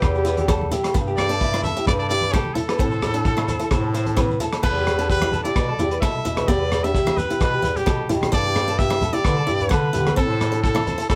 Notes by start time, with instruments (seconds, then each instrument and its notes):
Already playing: trumpet G4
0.02 bass clarinet E2, clean electric guitar B4, kick, cross-stick, closed hi-hat, low conga, low agogo, shekere
0.15 clean electric guitar G4, shekere
0.24 steel-string acoustic guitar E4, clean electric guitar B4, closed hi-hat, shekere
0.37 clean electric guitar G4, closed hi-hat, high conga, shekere
0.48 steel-string acoustic guitar B3, clean electric guitar A4, kick, cross-stick, closed hi-hat, low agogo, shekere
0.61 high conga
0.71 steel-string acoustic guitar E4, clean electric guitar G4, closed hi-hat, low conga, shekere
0.83 cross-stick, closed hi-hat, low agogo
0.94 bass clarinet G2, steel-string acoustic guitar B3, muted clean electric guitar stroke, kick, closed hi-hat, shekere
1.07 clean electric guitar G4, shekere
1.17 bass clarinet G2, trumpet D5, cross-stick, closed hi-hat, high conga, low agogo, shekere
1.29 steel-string acoustic guitar D4, clean electric guitar A4, closed hi-hat
1.40 clean electric guitar E4, kick, closed hi-hat, shekere
1.53 steel-string acoustic guitar E4, cross-stick, low agogo
1.63 clean electric guitar A4, trumpet E5, closed hi-hat, high conga, low conga, shekere
1.77 steel-string acoustic guitar E4, clean electric guitar G4, closed hi-hat
1.86 bass clarinet G2, clean electric guitar B4, trumpet D5, kick, cross-stick, closed hi-hat, low conga, low agogo, shekere
1.99 clean electric guitar A4, trumpet D5, shekere
2.09 steel-string acoustic guitar E4, clean electric guitar G4, trumpet D5, closed hi-hat, shekere
2.21 clean electric guitar B4, closed hi-hat, high conga, shekere
2.33 steel-string acoustic guitar B3, trumpet G4, clean electric guitar A4, kick, cross-stick, closed hi-hat, low agogo, shekere
2.45 high conga
2.54 steel-string acoustic guitar E4, trumpet A4, closed hi-hat, low conga, shekere
2.68 clean electric guitar B4, cross-stick, closed hi-hat, low agogo
2.79 bass clarinet A2, steel-string acoustic guitar C4, clean electric guitar A4, kick, closed hi-hat, shekere
2.91 clean electric guitar C5, shekere
3.02 bass clarinet A2, cross-stick, closed hi-hat, high conga, low conga, low agogo, shekere
3.14 steel-string acoustic guitar D4, clean electric guitar A4, closed hi-hat
3.25 clean electric guitar A4, kick, closed hi-hat, high conga, shekere
3.37 steel-string acoustic guitar E4, cross-stick, low agogo, shekere
3.48 clean electric guitar C5, closed hi-hat, high conga, low conga, shekere
3.59 steel-string acoustic guitar E4, clean electric guitar A4, closed hi-hat, shekere
3.71 bass clarinet A2, clean electric guitar C5, kick, cross-stick, closed hi-hat, low conga, low agogo, shekere
3.84 clean electric guitar A4
3.94 steel-string acoustic guitar E4, clean electric guitar C5, closed hi-hat, shekere
4.06 clean electric guitar A4, closed hi-hat, high conga
4.16 steel-string acoustic guitar C4, clean electric guitar B4, kick, cross-stick, closed hi-hat, low agogo, shekere
4.29 high conga, shekere
4.40 steel-string acoustic guitar E4, clean electric guitar A4, closed hi-hat, low conga, shekere
4.53 cross-stick, closed hi-hat, low agogo, shekere
4.63 bass clarinet E2, steel-string acoustic guitar B3, clean electric guitar A4, trumpet B4, kick, crash, shekere
4.75 clean electric guitar G4
4.86 cross-stick, closed hi-hat, low agogo, shekere
4.98 steel-string acoustic guitar D4, clean electric guitar A4, closed hi-hat, shekere
5.08 clean electric guitar G4, trumpet B4, kick, closed hi-hat, shekere
5.21 steel-string acoustic guitar E4, cross-stick, high conga, low agogo
5.32 clean electric guitar A4, closed hi-hat, high conga, low conga, shekere
5.44 steel-string acoustic guitar E4, clean electric guitar G4, trumpet D5, closed hi-hat
5.56 bass clarinet B2, clean electric guitar B4, kick, cross-stick, closed hi-hat, low agogo, shekere
5.68 clean electric guitar A4
5.79 bass clarinet E2, steel-string acoustic guitar E4, clean electric guitar G4, closed hi-hat, high conga, shekere
5.91 clean electric guitar B4, closed hi-hat, shekere
6.00 bass clarinet B2, steel-string acoustic guitar B3, clean electric guitar A4, trumpet E5, kick, cross-stick, closed hi-hat, low agogo, shekere
6.25 bass clarinet B2, steel-string acoustic guitar E4, muted clean electric guitar stroke, closed hi-hat, low conga, shekere
6.36 clean electric guitar B4, cross-stick, closed hi-hat, high conga, low agogo
6.47 bass clarinet E2, steel-string acoustic guitar B3, clean electric guitar G4, trumpet D5, kick, closed hi-hat, shekere
6.59 clean electric guitar B4
6.71 cross-stick, closed hi-hat, low agogo, shekere
6.83 steel-string acoustic guitar D4, clean electric guitar G4, trumpet E5, closed hi-hat, shekere
6.94 clean electric guitar G4, kick, closed hi-hat, shekere
7.06 steel-string acoustic guitar E4, cross-stick, high conga, low agogo
7.16 clean electric guitar B4, trumpet B4, closed hi-hat, high conga, low conga, shekere
7.29 steel-string acoustic guitar E4, clean electric guitar G4, closed hi-hat
7.40 bass clarinet B2, clean electric guitar B4, trumpet B4, kick, cross-stick, closed hi-hat, low agogo, shekere
7.52 clean electric guitar G4
7.62 bass clarinet E2, steel-string acoustic guitar E4, clean electric guitar B4, closed hi-hat, high conga, shekere
7.76 clean electric guitar G4, trumpet G4, closed hi-hat, low conga, shekere
7.86 bass clarinet B2, steel-string acoustic guitar B3, clean electric guitar A4, kick, cross-stick, closed hi-hat, low agogo, shekere
8.09 bass clarinet B2, steel-string acoustic guitar E4, clean electric guitar G4, closed hi-hat, low conga, shekere
8.21 cross-stick, closed hi-hat, high conga, low agogo
8.32 bass clarinet G2, steel-string acoustic guitar B3, clean electric guitar A4, trumpet D5, kick, closed hi-hat, shekere
8.45 clean electric guitar G4
8.55 cross-stick, closed hi-hat, low agogo, shekere
8.68 steel-string acoustic guitar D4, clean electric guitar A4, closed hi-hat, shekere
8.79 clean electric guitar G4, trumpet E5, kick, closed hi-hat, shekere
8.90 steel-string acoustic guitar E4, cross-stick, low agogo
9.01 clean electric guitar A4, closed hi-hat, high conga, low conga, shekere
9.13 steel-string acoustic guitar E4, clean electric guitar G4, trumpet D5, closed hi-hat
9.25 bass clarinet D3, clean electric guitar B4, kick, cross-stick, closed hi-hat, low agogo, shekere
9.37 clean electric guitar A4
9.47 bass clarinet G2, steel-string acoustic guitar E4, clean electric guitar G4, closed hi-hat, shekere
9.60 clean electric guitar B4, closed hi-hat, low conga
9.69 bass clarinet D3, steel-string acoustic guitar B3, clean electric guitar A4, trumpet B4, kick, cross-stick, closed hi-hat, low agogo, shekere
9.93 bass clarinet D3, steel-string acoustic guitar E4, clean electric guitar G4, closed hi-hat, low conga, shekere
10.06 clean electric guitar B4, cross-stick, closed hi-hat, high conga, low agogo
10.16 bass clarinet A2, steel-string acoustic guitar C4, clean electric guitar A4, trumpet A4, kick, closed hi-hat, shekere
10.29 clean electric guitar C5
10.40 cross-stick, closed hi-hat, low agogo, shekere
10.52 steel-string acoustic guitar D4, clean electric guitar A4, closed hi-hat, shekere
10.63 trumpet A4, clean electric guitar A4, kick, closed hi-hat, shekere
10.75 steel-string acoustic guitar E4, cross-stick, high conga, low agogo
10.87 clean electric guitar C5, closed hi-hat, high conga, low conga, shekere
10.98 steel-string acoustic guitar E4, clean electric guitar A4, closed hi-hat, shekere
11.09 bass clarinet E2, trumpet A4, clean electric guitar C5, kick, cross-stick, closed hi-hat, low agogo, shekere